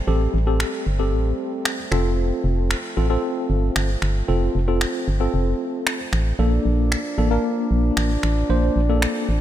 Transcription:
Already playing: G3 A3 C4
0.07 A1 C4 G4 A4
0.34 A1
0.47 C4 G4 A4
0.60 finger snap
0.87 G1
0.99 C4 G4 A4
1.13 A1
1.65 finger snap
1.91 F1 F3 C4 F4 A4, finger snap
2.44 F1
2.71 finger snap
2.97 A1 C4 F4 A4
3.10 C4 F4 A4
3.50 G1
3.76 G1, finger snap
4.02 G1, finger snap
4.28 F1 C4 F4 A4
4.55 F1
4.68 C4 F4 A4
4.81 finger snap
5.08 G1
5.20 C4 F4 A4
5.34 F1
5.87 finger snap
6.13 A1, finger snap
6.39 A#1 F3 A#3 D4 A4
6.66 A#1
6.92 finger snap
7.18 A1 A#3 D4 A4
7.31 A#3 D4 A#4
7.71 A#1
7.97 A1, finger snap
8.23 A1, finger snap
8.50 A#1 A#3 C4 D4 C5
8.76 A#1
8.89 A#3 D4 A4
9.02 finger snap
9.29 A1

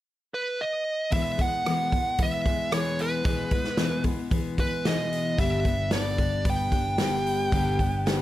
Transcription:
0.34 B4
0.61 D#5
1.10 E2 B2 E3 G#3 B3 G#4 E5, kick, open hi-hat
1.38 E3 G#3 B3 G#4 F#5, kick, open hi-hat
1.65 E2 B2 E3 G#3 B3 G#4, cross-stick, open hi-hat
1.92 E3 G#3 B3 G#4, kick, open hi-hat
2.18 E3 G#3 B3 G#4, kick, open hi-hat
2.23 E5
2.45 E3 G#3 B3 G#4, kick, open hi-hat
2.71 E2 B2 E3 G#3 B3 G#4 C#5, cross-stick, open hi-hat
2.99 B4, open hi-hat
3.23 E2 B2 E3 G#3 B3 G#4, kick, open hi-hat
3.51 E3 G#3 B3 G#4, kick, open hi-hat
3.64 snare
3.77 E2 B2 E3 G#3 B3 G#4, snare, open hi-hat
4.03 E3 G#3 B3 G#4, kick, open hi-hat
4.31 E3 G#3 B3 G#4, kick, open hi-hat
4.58 E3 G#3 B3 G#4 B4, kick, open hi-hat
4.85 E2 B2 E3 G#3 B3 G#4 D#5, snare, open hi-hat
5.13 open hi-hat
5.37 G1 G2 D3 G3 B3 D4 G4 E5, kick, open hi-hat
5.64 G3 B3 D4 G4, kick, open hi-hat
5.90 G2 D3 G3 B3 D4 G4 D5, snare, open hi-hat
6.18 G3 B3 D4 G4, kick, open hi-hat
6.45 G3 B3 D4 G4, kick, open hi-hat
6.50 G5
6.72 G3 B3 D4 G4, kick, open hi-hat
6.98 G2 D3 G3 B3 D4 G4, snare, open hi-hat
7.26 open hi-hat
7.52 G1 G2 D3 G3 B3 D4 G4, kick, open hi-hat
7.79 G3 B3 D4 G4, kick, open hi-hat
8.06 G2 D3 G3 B3 D4 G4, snare, open hi-hat

